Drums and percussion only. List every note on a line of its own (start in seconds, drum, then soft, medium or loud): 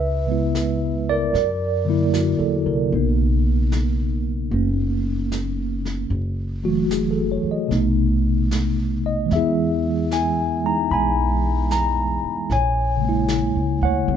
0.55 snare soft
0.55 hi-hat pedal medium
1.35 brush sweep soft
1.35 snare soft
2.14 snare soft
2.14 hi-hat pedal soft
2.93 brush sweep soft
3.72 snare soft
3.72 hi-hat pedal soft
4.52 brush sweep soft
5.32 snare soft
5.32 hi-hat pedal soft
5.85 snare soft
6.12 brush sweep soft
6.91 snare soft
6.91 hi-hat pedal medium
7.71 brush sweep soft
7.71 snare soft
8.51 snare soft
8.51 hi-hat pedal soft
9.31 brush sweep soft
9.31 snare soft
10.11 snare soft
10.11 hi-hat pedal soft
10.91 brush sweep soft
11.71 snare soft
11.71 hi-hat pedal soft
12.51 brush sweep soft
12.51 snare soft
13.28 snare soft
13.28 hi-hat pedal soft
14.08 brush sweep soft